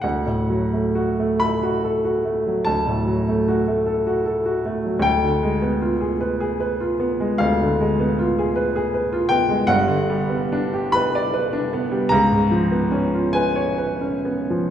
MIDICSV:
0, 0, Header, 1, 2, 480
1, 0, Start_track
1, 0, Tempo, 910470
1, 18, Time_signature, 12, 3, 24, 8
1, 979, Tempo, 825309
1, 1459, Tempo, 786370
1, 4819, Tempo, 745342
1, 5779, Tempo, 831025
1, 6739, Tempo, 766284
1, 7219, Tempo, 819672
1, 7699, Tempo, 878477
1, 8179, Tempo, 938967
1, 8639, End_track
2, 0, Start_track
2, 0, Title_t, "Upright piano"
2, 0, Program_c, 0, 0
2, 0, Control_c, 0, 64, 127
2, 8, Note_on_c, 0, 78, 67
2, 21, Note_on_c, 0, 38, 57
2, 27, Control_c, 0, 64, 0
2, 120, Control_c, 0, 64, 127
2, 140, Note_on_c, 0, 45, 48
2, 261, Note_on_c, 0, 54, 49
2, 332, Note_off_c, 0, 45, 0
2, 386, Note_on_c, 0, 57, 44
2, 458, Note_off_c, 0, 54, 0
2, 502, Note_on_c, 0, 66, 53
2, 586, Note_off_c, 0, 57, 0
2, 629, Note_on_c, 0, 57, 49
2, 702, Note_off_c, 0, 66, 0
2, 736, Note_on_c, 0, 83, 91
2, 747, Note_off_c, 0, 78, 0
2, 748, Note_on_c, 0, 69, 49
2, 820, Note_off_c, 0, 57, 0
2, 859, Note_on_c, 0, 66, 51
2, 933, Note_off_c, 0, 69, 0
2, 970, Note_on_c, 0, 69, 51
2, 1047, Note_off_c, 0, 66, 0
2, 1088, Note_on_c, 0, 66, 47
2, 1167, Note_off_c, 0, 69, 0
2, 1208, Note_on_c, 0, 57, 46
2, 1286, Note_off_c, 0, 66, 0
2, 1336, Note_on_c, 0, 54, 49
2, 1405, Note_off_c, 0, 57, 0
2, 1437, Note_off_c, 0, 38, 0
2, 1438, Note_on_c, 0, 81, 78
2, 1450, Note_off_c, 0, 83, 0
2, 1450, Note_on_c, 0, 38, 48
2, 1531, Note_off_c, 0, 54, 0
2, 1574, Note_on_c, 0, 45, 52
2, 1697, Note_on_c, 0, 54, 48
2, 1774, Note_off_c, 0, 45, 0
2, 1826, Note_on_c, 0, 57, 51
2, 1896, Note_off_c, 0, 54, 0
2, 1947, Note_on_c, 0, 66, 56
2, 2020, Note_off_c, 0, 57, 0
2, 2066, Note_on_c, 0, 57, 49
2, 2141, Note_off_c, 0, 66, 0
2, 2181, Note_on_c, 0, 69, 55
2, 2261, Note_off_c, 0, 57, 0
2, 2305, Note_on_c, 0, 66, 55
2, 2380, Note_off_c, 0, 69, 0
2, 2420, Note_on_c, 0, 69, 55
2, 2503, Note_off_c, 0, 66, 0
2, 2542, Note_on_c, 0, 66, 54
2, 2620, Note_off_c, 0, 69, 0
2, 2663, Note_on_c, 0, 57, 55
2, 2739, Note_off_c, 0, 66, 0
2, 2786, Note_on_c, 0, 54, 45
2, 2858, Note_off_c, 0, 57, 0
2, 2862, Note_off_c, 0, 38, 0
2, 2871, Note_on_c, 0, 38, 63
2, 2887, Note_on_c, 0, 79, 92
2, 2899, Note_off_c, 0, 81, 0
2, 2907, Note_off_c, 0, 54, 0
2, 2920, Control_c, 0, 64, 0
2, 3020, Note_on_c, 0, 50, 50
2, 3022, Control_c, 0, 64, 127
2, 3136, Note_on_c, 0, 56, 59
2, 3210, Note_off_c, 0, 50, 0
2, 3253, Note_on_c, 0, 59, 55
2, 3326, Note_off_c, 0, 56, 0
2, 3372, Note_on_c, 0, 65, 58
2, 3444, Note_off_c, 0, 59, 0
2, 3487, Note_on_c, 0, 68, 52
2, 3563, Note_off_c, 0, 65, 0
2, 3610, Note_on_c, 0, 71, 59
2, 3681, Note_off_c, 0, 68, 0
2, 3731, Note_on_c, 0, 68, 61
2, 3803, Note_off_c, 0, 71, 0
2, 3852, Note_on_c, 0, 71, 62
2, 3925, Note_off_c, 0, 68, 0
2, 3975, Note_on_c, 0, 65, 58
2, 4047, Note_off_c, 0, 71, 0
2, 4092, Note_on_c, 0, 59, 59
2, 4169, Note_off_c, 0, 65, 0
2, 4218, Note_on_c, 0, 56, 60
2, 4288, Note_off_c, 0, 59, 0
2, 4295, Note_off_c, 0, 38, 0
2, 4327, Note_off_c, 0, 79, 0
2, 4328, Note_on_c, 0, 77, 86
2, 4340, Note_on_c, 0, 38, 67
2, 4412, Note_off_c, 0, 56, 0
2, 4469, Note_on_c, 0, 50, 62
2, 4586, Note_on_c, 0, 56, 62
2, 4658, Note_off_c, 0, 50, 0
2, 4703, Note_on_c, 0, 59, 62
2, 4776, Note_off_c, 0, 56, 0
2, 4820, Note_on_c, 0, 65, 68
2, 4896, Note_off_c, 0, 59, 0
2, 4946, Note_on_c, 0, 68, 62
2, 5017, Note_off_c, 0, 65, 0
2, 5057, Note_on_c, 0, 71, 67
2, 5140, Note_off_c, 0, 68, 0
2, 5186, Note_on_c, 0, 68, 66
2, 5254, Note_off_c, 0, 71, 0
2, 5300, Note_off_c, 0, 77, 0
2, 5304, Note_on_c, 0, 71, 60
2, 5375, Note_off_c, 0, 68, 0
2, 5423, Note_on_c, 0, 65, 69
2, 5493, Note_off_c, 0, 71, 0
2, 5528, Note_on_c, 0, 79, 103
2, 5540, Note_on_c, 0, 59, 66
2, 5611, Note_off_c, 0, 65, 0
2, 5660, Note_on_c, 0, 56, 57
2, 5731, Note_off_c, 0, 59, 0
2, 5755, Note_off_c, 0, 38, 0
2, 5774, Note_off_c, 0, 79, 0
2, 5774, Note_on_c, 0, 78, 99
2, 5778, Note_on_c, 0, 31, 68
2, 5781, Note_off_c, 0, 56, 0
2, 5785, Note_on_c, 0, 43, 76
2, 5791, Control_c, 0, 64, 0
2, 5877, Control_c, 0, 64, 127
2, 5895, Note_on_c, 0, 50, 61
2, 6021, Note_on_c, 0, 55, 72
2, 6087, Note_off_c, 0, 50, 0
2, 6136, Note_on_c, 0, 59, 55
2, 6215, Note_off_c, 0, 55, 0
2, 6267, Note_on_c, 0, 62, 68
2, 6338, Note_off_c, 0, 59, 0
2, 6391, Note_on_c, 0, 67, 61
2, 6464, Note_off_c, 0, 62, 0
2, 6498, Note_on_c, 0, 83, 105
2, 6507, Note_off_c, 0, 78, 0
2, 6512, Note_on_c, 0, 71, 70
2, 6582, Note_off_c, 0, 67, 0
2, 6630, Note_on_c, 0, 74, 76
2, 6697, Note_off_c, 0, 71, 0
2, 6737, Note_on_c, 0, 71, 75
2, 6814, Note_off_c, 0, 74, 0
2, 6858, Note_on_c, 0, 62, 67
2, 6930, Note_off_c, 0, 71, 0
2, 6983, Note_on_c, 0, 59, 68
2, 7050, Note_off_c, 0, 62, 0
2, 7100, Note_on_c, 0, 55, 67
2, 7174, Note_off_c, 0, 59, 0
2, 7194, Note_off_c, 0, 31, 0
2, 7198, Note_off_c, 0, 43, 0
2, 7210, Note_on_c, 0, 82, 103
2, 7214, Note_off_c, 0, 83, 0
2, 7221, Note_off_c, 0, 55, 0
2, 7225, Note_on_c, 0, 37, 84
2, 7232, Control_c, 0, 64, 0
2, 7343, Control_c, 0, 64, 127
2, 7344, Note_on_c, 0, 44, 62
2, 7457, Note_on_c, 0, 53, 59
2, 7532, Note_off_c, 0, 44, 0
2, 7575, Note_on_c, 0, 59, 59
2, 7651, Note_off_c, 0, 53, 0
2, 7694, Note_on_c, 0, 61, 65
2, 7769, Note_off_c, 0, 59, 0
2, 7817, Note_on_c, 0, 65, 54
2, 7885, Note_off_c, 0, 61, 0
2, 7919, Note_on_c, 0, 80, 94
2, 7930, Note_on_c, 0, 71, 69
2, 7931, Note_off_c, 0, 82, 0
2, 8008, Note_off_c, 0, 65, 0
2, 8043, Note_on_c, 0, 73, 67
2, 8128, Note_off_c, 0, 71, 0
2, 8166, Note_on_c, 0, 71, 55
2, 8244, Note_off_c, 0, 73, 0
2, 8286, Note_on_c, 0, 61, 50
2, 8363, Note_off_c, 0, 71, 0
2, 8407, Note_on_c, 0, 59, 50
2, 8483, Note_off_c, 0, 61, 0
2, 8536, Note_on_c, 0, 53, 52
2, 8606, Note_off_c, 0, 59, 0
2, 8637, Note_off_c, 0, 80, 0
2, 8639, Note_off_c, 0, 37, 0
2, 8639, Note_off_c, 0, 53, 0
2, 8639, End_track
0, 0, End_of_file